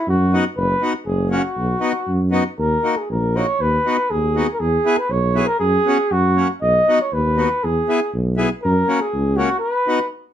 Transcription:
0.08 F#2 F#4
0.33 B3 D#4 F#4
0.56 F#1 B4
0.82 B3 D#4 F#4
1.06 F#1 G#4
1.30 A#3 C#4 F#4
1.57 B1
1.80 B3 D#4 F#4
2.08 F#2
2.31 B3 D#4 F#4
2.59 D#2 A#4
2.83 A#3 D#4 F#4
2.97 G#4
3.10 A#1 A#4
3.35 A#3 D#4 F#4 C#5
3.60 D#2 B4
3.85 B3 D#4 F#4
4.11 D#2 G#4
4.36 B3 D#4 F#4
4.54 A#4
4.60 E2 G#4
4.85 B3 E4 G#4
4.98 B4
5.10 B1 C#5
5.35 B3 E4 G#4
5.46 A#4
5.60 F#2 G#4
5.86 B3 C#4 F#4
6.11 F#2 F#4
6.36 A#3 C#4 F#4
6.62 B1 D#5
6.88 B3 D#4 F#4
7.01 C#5
7.13 D#2 B4
7.37 B3 D#4 F#4
7.64 E2 G#4
7.88 B3 E4 G#4
8.14 B1
8.36 B3 E4 G#4
8.63 F#2 A#4
8.87 A#3 C#4 F#4
9.01 G#4
9.14 C#2
9.37 A#3 C#4 F#4
9.59 B4
9.87 B3 D#4 F#4

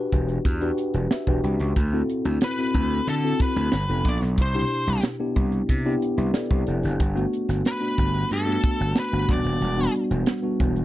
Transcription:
Already playing: D4 F#4 G4 B4
0.12 E1, kick, closed hi-hat
0.29 closed hi-hat
0.45 E2, kick, closed hi-hat
0.61 D4 F#4 G4 B4, closed hi-hat
0.78 closed hi-hat
0.94 E1, closed hi-hat
1.11 E5, snare, closed hi-hat
1.27 E1 D4 F#4 G4 B4, kick
1.44 C2 G5, closed hi-hat
1.60 C#2, closed hi-hat
1.76 D2, kick, closed hi-hat
1.93 C4 E4 F#4 A4
2.10 closed hi-hat
2.25 D2, closed hi-hat
2.41 B4, snare, closed hi-hat
2.58 C4 E4 F#4 A4, snare, closed hi-hat
2.74 D2, kick, closed hi-hat
2.91 closed hi-hat
3.07 D3 A4, closed hi-hat
3.24 C4 E4 F#4 A4
3.40 B4, kick, closed hi-hat
3.56 D2, closed hi-hat
3.72 G1, snare, closed hi-hat
3.88 F1 B3 D4 F4 A4, closed hi-hat
4.05 A#1 D5, kick, closed hi-hat
4.21 B1, snare, closed hi-hat
4.38 C2, kick, closed hi-hat
4.42 C5
4.54 B2 D4 E4 G4, closed hi-hat
4.70 closed hi-hat
4.86 C2, closed hi-hat
5.03 snare, closed hi-hat
5.20 B3 D4 E4 G4
5.36 C2, kick, closed hi-hat
5.52 closed hi-hat
5.69 C3, kick, closed hi-hat
5.85 B3 D4 E4 G4
6.02 closed hi-hat
6.18 C2 B4 E5, closed hi-hat
6.34 A4 D5, snare, closed hi-hat
6.50 C2 G4 C5, kick
6.67 F1 E4 A4, closed hi-hat
6.83 F#1 D4 G4, snare, closed hi-hat
7.00 G1, kick, closed hi-hat
7.15 A3 B3 D4 F#4, closed hi-hat
7.33 closed hi-hat
7.49 G1, snare, closed hi-hat
7.65 B4, snare, closed hi-hat
7.80 A3 B3 D4 F#4, snare
7.98 G1, kick, closed hi-hat
8.14 closed hi-hat
8.31 G2 A4, closed hi-hat
8.46 A3 B3 D4 F#4
8.63 kick, closed hi-hat
8.80 G1, closed hi-hat
8.96 B4, snare, closed hi-hat
9.12 G1 A3 B3 D4 F#4
9.28 E1 G3 B3 D4 F#4 D5, kick, closed hi-hat
9.45 D#1, closed hi-hat
9.61 E1, closed hi-hat
9.77 G3 B3 D4 F#4
9.95 closed hi-hat
10.11 E1, closed hi-hat
10.26 snare, closed hi-hat
10.42 G3 B3 D4 F#4
10.60 E1, kick, closed hi-hat
10.76 closed hi-hat

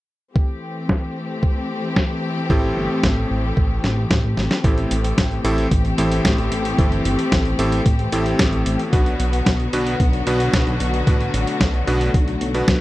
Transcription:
0.36 E3 A3 C4 G4, kick
0.89 kick, snare
1.43 kick
1.96 kick, snare
2.50 A1 A2 C4 E4 G4 A4, kick
2.77 G1
3.03 A1, kick, snare
3.30 A1
3.57 A1, kick
3.84 A1, snare
4.11 A1, kick, snare
4.24 A1
4.37 A1, snare
4.51 snare
4.64 A1 A2 E3 A3 C4 E4 G4 A4, kick, closed hi-hat
4.78 closed hi-hat
4.91 A1, closed hi-hat
5.04 closed hi-hat
5.18 A1, kick, snare, closed hi-hat
5.31 closed hi-hat
5.44 A1 A2 C4 E4 G4 A4, closed hi-hat
5.58 closed hi-hat
5.71 A1, kick, closed hi-hat
5.85 closed hi-hat
5.98 A1 A2 C4 E4 G4 A4, closed hi-hat
6.12 closed hi-hat
6.25 A1, kick, snare, closed hi-hat
6.38 A1, closed hi-hat
6.52 A1, closed hi-hat
6.65 closed hi-hat
6.78 G1 A2 C4 E4 G4 A4, kick, closed hi-hat
6.92 closed hi-hat
7.05 G1, closed hi-hat
7.19 closed hi-hat
7.32 A1, kick, snare, closed hi-hat
7.45 closed hi-hat
7.59 A1 A2 C4 E4 G4 A4, closed hi-hat
7.72 closed hi-hat
7.86 A1, kick, closed hi-hat
7.99 closed hi-hat
8.12 A1 A2 C4 E4 G4 A4, closed hi-hat
8.26 closed hi-hat
8.39 A1, kick, snare, closed hi-hat
8.53 A1, closed hi-hat
8.66 A1, closed hi-hat
8.79 closed hi-hat
8.93 B1 B2 D3 F#3 B3 D4 F#4 B4, kick, closed hi-hat
9.06 closed hi-hat
9.20 B1, closed hi-hat
9.33 closed hi-hat
9.46 B1, kick, snare, closed hi-hat
9.60 closed hi-hat
9.73 B1 B2 B3 D4 F#4 B4, closed hi-hat
9.87 closed hi-hat
10.00 B1, kick, closed hi-hat
10.13 closed hi-hat
10.27 B1 B2 B3 D4 F#4 B4, closed hi-hat
10.40 closed hi-hat
10.53 B1, kick, snare, closed hi-hat
10.67 B1, closed hi-hat
10.80 B1, closed hi-hat
10.94 closed hi-hat
11.07 A1 B2 A3 B3 D4 F#4 B4, kick, closed hi-hat
11.21 closed hi-hat
11.34 A1, closed hi-hat
11.47 closed hi-hat
11.61 B1, kick, snare, closed hi-hat
11.74 closed hi-hat
11.87 B1 B2 B3 D4 F#4 B4, closed hi-hat
12.01 closed hi-hat
12.14 B1, kick, closed hi-hat
12.28 closed hi-hat
12.41 B1, closed hi-hat
12.54 B2 B3 D4 F#4 B4, closed hi-hat
12.68 B1, kick, snare, closed hi-hat

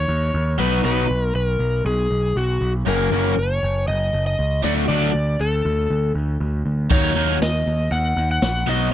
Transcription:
Already playing: C#5
0.08 D#2
0.34 D#2
0.58 B1 B2 F#3 B3 D#4 F#4 B4
0.83 B1 B2 F#3 B3 D#4 F#4 B4
1.10 B1
1.23 A#4
1.34 B1 B4
1.47 A#4
1.59 B1
1.85 B1 G#4
2.11 B1
2.36 B1 F#4
2.61 B1
2.85 F#1 F#2 C#3 F#3 A#3 C#4 F#4 A#4
3.11 F#1 F#2 C#3 F#3 A#3 C#4 F#4
3.37 F#1 C#5
3.63 F#1
3.88 F#1 D#5
4.13 F#1
4.27 D#5
4.39 C#2
4.63 D2 D3 F#3 A3 D4 F#4 D5
4.88 D2 D3 F#3 A3 D4 F#4 D5
5.14 D2
5.40 D2 A4
5.65 D2
5.90 D2
6.15 D2
6.40 D2
6.66 D2
6.90 D#2 D#3 F#3 A#3 D#4 F#4 C#5, kick, open hi-hat
7.15 D#2 D#3 F#3 A#3 D#4 F#4, open hi-hat
7.30 snare
7.41 D#2 D#5, snare, open hi-hat
7.66 D#2, open hi-hat
7.91 D#2 F#5, open hi-hat
8.17 D#2, open hi-hat
8.31 F#5
8.42 A#1, snare, open hi-hat
8.66 B1 B2 F#3 B3 D#4 F#4 D#5, open hi-hat

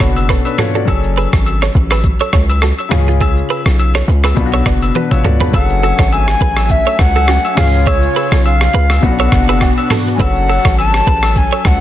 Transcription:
Already playing: B2 B3 D4 F#4
0.00 F#1 A4 C#5, kick, cross-stick, shaker
0.16 high agogo, shaker
0.29 C#4 F#4 A4 B4, kick, cross-stick, shaker
0.45 D4 B4, high agogo, shaker
0.58 F4 F#4 A4 C#5, cross-stick, mid tom, shaker
0.74 F#4 A4 D5, shaker
0.85 F#1 F#3 C#4 G#4 A4, kick, high agogo, shaker
0.89 F#4 A4
1.03 shaker
1.17 G#4 B4, high agogo, shaker
1.32 G#1, kick, cross-stick, shaker
1.46 high agogo, shaker
1.62 A4 C#5, cross-stick, shaker
1.75 A1, kick, shaker
1.91 G#4 B4, cross-stick, high agogo, shaker
2.04 kick, shaker
2.20 A4 C#5, high agogo, shaker
2.33 C#2 A4 C#5, kick, cross-stick, shaker
2.49 high agogo, shaker
2.62 F#4 A4, cross-stick, shaker
2.78 high agogo, shaker
2.89 C#2 C#3 C#4 F4 G#4, cross-stick, mid tom, shaker
2.93 F4 G#4
3.08 F4 G#4, shaker
3.21 F4 G#4, kick, high agogo, shaker
3.36 shaker
3.50 G#4 B4, high agogo, shaker
3.65 B1, cross-stick, shaker
3.79 high agogo, shaker
3.95 A4 C#5, cross-stick, shaker
4.08 C#2, shaker
4.24 G#4 B4, cross-stick, high agogo, shaker
4.34 B1 B2 B3 D4, kick, shaker
4.39 F4
4.46 F#4
4.53 A4 C#5, high agogo, shaker
4.66 F#1 B4 D5, kick, cross-stick, shaker
4.82 high agogo, shaker
4.95 D4 F#4 B4, high tom, shaker
5.11 A1 F4 C#5, mid tom, high agogo, shaker
5.24 C#2 F#4 A4 D5, mid tom, shaker
5.40 D4 G#4 B4, floor tom, shaker
5.51 F#1 F#3 A3 C#4 G#4 B4 F#5 G#5, kick, high agogo, shaker
5.55 G#4 A4
5.69 shaker
5.83 F#4 A4, high agogo, shaker
5.98 G#1 A4 C#5, kick, cross-stick, shaker
6.12 G#5, high agogo, shaker
6.28 cross-stick, shaker
6.41 A1 G#4 B4, kick, shaker
6.57 cross-stick, high agogo, shaker
6.69 E5, kick, shaker
6.86 A4 C#5, high agogo, shaker
6.99 C#2 F#5, kick, cross-stick, shaker
7.15 F#4 A4, high agogo, shaker
7.28 C#4 F#4, cross-stick, low woodblock, shaker
7.44 high agogo, shaker
7.55 C#2 C#3 C#4 F4 G#4 F5, cross-stick, mid tom, open hi-hat, shaker
7.60 G#4
7.74 shaker
7.86 G#4 C#5, kick, high agogo, shaker
8.02 shaker
8.16 G#4 B4, high agogo, shaker
8.31 B1 A4 C#5, cross-stick, shaker
8.45 F5, high agogo, shaker
8.61 cross-stick, shaker
8.74 C#2 G#4 B4, shaker
8.90 cross-stick, high agogo, shaker
9.01 B1 B2 B3 C#4 D4 F#4 F#5, kick, shaker
9.06 F#4
9.11 D4
9.19 A4 C#5, high agogo, shaker
9.32 F#1, kick, cross-stick, shaker
9.48 G#4 B4, high agogo, shaker
9.61 D4 F#4, kick, cross-stick, low woodblock, shaker
9.77 high agogo, shaker
9.90 F#4 A4, cross-stick, mid tom, open hi-hat, shaker
10.07 shaker
10.15 F#3 G#5
10.19 F#1 F#3 C#4 F#4 G#4 A4 B4 F#5, kick, high agogo, shaker
10.35 shaker
10.49 F#4 A4, high agogo, shaker
10.64 G#1 A4 C#5, kick, cross-stick, shaker
10.78 A5, high agogo, shaker
10.94 cross-stick, shaker
11.07 A1 G#4 B4, kick, shaker
11.23 cross-stick, high agogo, shaker
11.36 G#5, kick, shaker
11.52 A4 C#5, high agogo, shaker
11.65 C#2 F#5, kick, cross-stick, shaker

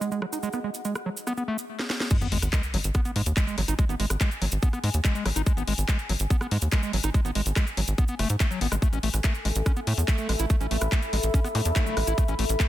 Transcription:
Already playing: G#4 D#5 F#5
0.01 G#3, cabasa
0.12 G#3, cabasa
0.22 F#3, cross-stick
0.33 D#4, cabasa
0.43 G#3, cabasa
0.53 B3, cross-stick, cabasa
0.64 G#3
0.74 cabasa
0.85 G#3, cabasa
0.95 cross-stick, cabasa
1.06 F#3
1.17 cabasa
1.27 B3, cross-stick, cabasa
1.37 B3, cabasa
1.48 A3
1.58 cabasa
1.79 snare
1.90 snare
2.00 snare
2.10 G#3, kick, closed hi-hat, crash, sub drop, cabasa
2.21 G#1 B3, closed hi-hat, cabasa
2.32 G#1 G#3, open hi-hat
2.42 G#1, cross-stick, closed hi-hat, cabasa
2.53 G#3, kick, clap, closed hi-hat, cabasa
2.63 closed hi-hat, cabasa
2.74 G#1 F#3, open hi-hat
2.84 G#1, closed hi-hat, cabasa
2.94 B3, kick, cross-stick, closed hi-hat, cabasa
2.98 G#5
3.05 B3, closed hi-hat, cabasa
3.16 G#2 G#3, open hi-hat
3.26 D#2, closed hi-hat, cabasa
3.37 G#3, kick, clap, closed hi-hat, cabasa
3.47 G#3, closed hi-hat, cabasa
3.58 G#1 F#3, cross-stick, open hi-hat
3.68 G#1 D#4, closed hi-hat, cabasa
3.79 G#3, kick, closed hi-hat, cabasa
3.89 G#1 B3, closed hi-hat, cabasa
4.00 G#1 G#3, open hi-hat
4.10 G#1, cross-stick, closed hi-hat, cabasa
4.21 G#3, kick, clap, closed hi-hat, cabasa
4.31 closed hi-hat, cabasa
4.42 G#1 F#3, open hi-hat
4.52 G#1, closed hi-hat, cabasa
4.62 B3, kick, closed hi-hat, cabasa
4.73 B3, cross-stick, closed hi-hat, cabasa
4.84 G#2 G#3, open hi-hat
4.94 D#2, closed hi-hat, cabasa
5.05 G#3, kick, clap, closed hi-hat, cabasa
5.15 G#3, closed hi-hat, cabasa
5.26 G#1 F#3, cross-stick, open hi-hat
5.36 G#1 D#4, closed hi-hat, cabasa
5.46 G#3, kick, closed hi-hat, cabasa
5.57 G#1 B3, closed hi-hat, cabasa
5.67 G#1 G#3, open hi-hat
5.78 G#1, closed hi-hat, cabasa
5.88 G#3, kick, cross-stick, clap, closed hi-hat, cabasa
5.99 closed hi-hat, cabasa
6.09 G#1 F#3, open hi-hat
6.19 G#1, closed hi-hat, cabasa
6.30 B3, kick, closed hi-hat, cabasa
6.41 B3, cross-stick, closed hi-hat, cabasa
6.51 G#2 G#3, open hi-hat
6.61 D#2, closed hi-hat, cabasa
6.72 G#3, kick, clap, closed hi-hat, cabasa
6.83 G#3, closed hi-hat, cabasa
6.93 G#1 F#3, open hi-hat
7.03 G#1 D#4, cross-stick, closed hi-hat, cabasa
7.14 G#3, kick, closed hi-hat, cabasa
7.25 G#1 B3, closed hi-hat, cabasa
7.35 G#1 G#3, open hi-hat
7.46 G#1, closed hi-hat, cabasa
7.56 G#3, kick, cross-stick, clap, closed hi-hat, cabasa
7.67 closed hi-hat, cabasa
7.77 G#1 F#3, open hi-hat
7.88 G#1, closed hi-hat, cabasa
7.98 B3, kick, closed hi-hat, cabasa
8.08 B3, closed hi-hat, cabasa
8.19 F#1 A3, cross-stick, open hi-hat
8.29 G#2, closed hi-hat, cabasa
8.40 A3, kick, clap, closed hi-hat, cabasa
8.51 F#3, closed hi-hat, cabasa
8.61 G#1 B3, open hi-hat
8.72 G#1 G#3, cross-stick, closed hi-hat, cabasa
8.82 A3 A4, kick, closed hi-hat, cabasa
8.93 A1 C#4, closed hi-hat, cabasa
9.03 A1 A3, open hi-hat
9.14 A1, cross-stick, closed hi-hat, cabasa
9.24 A3, kick, clap, closed hi-hat, cabasa
9.35 closed hi-hat, cabasa
9.40 E5
9.45 A1 G#3, open hi-hat
9.55 A1, closed hi-hat, cabasa
9.66 C#4, kick, cross-stick, closed hi-hat, cabasa
9.76 B3, closed hi-hat, cabasa
9.87 A2 A3, open hi-hat
9.95 E2 B5, closed hi-hat, cabasa
10.08 A3, kick, clap, closed hi-hat, cabasa
10.18 A3, closed hi-hat, cabasa
10.29 A1 G#3, cross-stick, open hi-hat
10.39 A1 E4, closed hi-hat, cabasa
10.50 A3, kick, closed hi-hat, cabasa
10.61 A1 C#4, closed hi-hat, cabasa
10.71 A1 A3, open hi-hat
10.81 A1, cross-stick, closed hi-hat, cabasa
10.92 A3, kick, clap, closed hi-hat, cabasa
11.02 closed hi-hat, cabasa
11.13 A1 G#3, open hi-hat
11.23 A1, closed hi-hat, cabasa
11.34 C#4, kick, closed hi-hat, cabasa
11.44 B3, cross-stick, closed hi-hat, cabasa
11.55 A2 A3, open hi-hat, zap
11.65 E2, closed hi-hat, cabasa
11.76 A3, kick, clap, closed hi-hat, cabasa
11.86 A3, closed hi-hat, cabasa
11.97 A1 G#3, cross-stick, open hi-hat
12.07 A1 E4, closed hi-hat, cabasa
12.18 A3, kick, closed hi-hat, cabasa
12.28 A1 C#4, closed hi-hat, cabasa
12.39 A1 A3, open hi-hat
12.49 A1, closed hi-hat, cabasa
12.60 A3, kick, cross-stick, clap, closed hi-hat, cabasa

